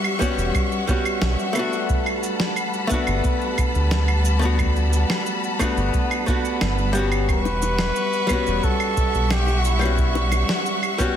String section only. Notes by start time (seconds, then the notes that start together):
Already playing: G3 E5 F#5 C#6
1.89 G3 A5 B5
7.28 G3 E5 F#5 C#6